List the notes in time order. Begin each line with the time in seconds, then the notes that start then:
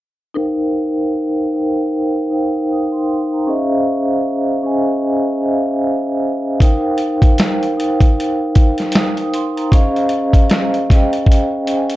0.35 D#4 A#4 C5 F5 G5
1.53 D#4 A#4 C5 F5 G5
2.30 D#4 A#4 C5 F5 G5
2.71 D#6
2.92 C6
3.32 A#5
3.47 C#4 G#4 C5 D#5 E5
3.56 F5
4.63 C#4 G#4 C5 D#5 G#5
5.42 C#4 G#4 C5 D#5 E5
5.52 F5
6.60 D#4 A#4 C5 F5 G5, kick, closed hi-hat
6.98 closed hi-hat
7.22 kick, closed hi-hat
7.38 snare, closed hi-hat
7.63 closed hi-hat
7.77 D#4 A#4 C5 F5 G5, closed hi-hat
8.00 kick, closed hi-hat
8.20 closed hi-hat
8.55 kick, closed hi-hat
8.78 snare, closed hi-hat
8.92 D#6, snare, closed hi-hat
9.17 closed hi-hat
9.34 C6, closed hi-hat
9.57 A#5, closed hi-hat
9.72 C#4 G#4 C5 D#5 F5, kick, closed hi-hat
9.96 closed hi-hat
10.09 closed hi-hat
10.33 kick, closed hi-hat
10.50 snare, closed hi-hat
10.74 closed hi-hat
10.90 C#4 G#4 C5 D#5 G5, kick, snare, closed hi-hat
11.13 closed hi-hat
11.26 kick
11.32 closed hi-hat
11.66 C#4 G#4 C5 D#5 G5, closed hi-hat
11.76 G#5
11.90 closed hi-hat